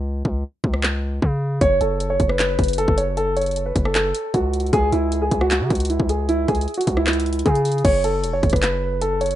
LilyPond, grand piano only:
\new Staff \with { instrumentName = "Grand piano" } { \time 4/4 \key fis \minor \tempo 4 = 154 r1 | cis''8 a'8. cis''8 b'16 b'4 a'8 cis''8 | a'8 cis''8. b'8 a'16 a'4 fis'4 | gis'8 e'8. gis'8 fis'16 fis'4 e'8 gis'8 |
e'8 gis'8. fis'8 e'16 e'4 gis'4 | cis''8 a'8. cis''8 b'16 b'4 a'8 cis''8 | }